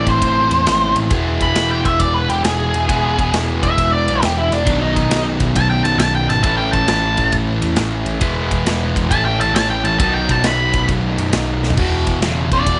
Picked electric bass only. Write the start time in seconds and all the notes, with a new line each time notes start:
0.07 A1
0.22 A1
0.51 E2
0.67 A1
0.96 A1
1.11 E1
1.40 E1
1.55 E1
1.85 E1
2.00 E1
2.29 E1
2.44 E1
2.74 E1
2.89 E1
3.19 E1
3.33 E1
3.63 E1
3.78 E1
4.07 B1
4.23 E1
4.51 E1
4.67 B1
4.97 B1
5.10 B1
5.41 B1
5.56 B1
5.84 B1
5.98 B1
6.28 G#1
6.44 A1
6.74 A1
6.87 A1
7.17 A1
7.32 A1
7.62 E2
7.77 A1
8.06 A1
8.21 E1
8.51 E1
8.65 E1
8.96 E1
9.11 A1
9.40 A1
9.54 A1
9.84 A1
10.00 B1
10.29 B1
10.43 B1
10.74 B1
10.89 B1
11.18 F#2
11.33 B1
11.62 B1
11.78 E1
12.07 E1
12.21 E1
12.52 E1
12.66 E1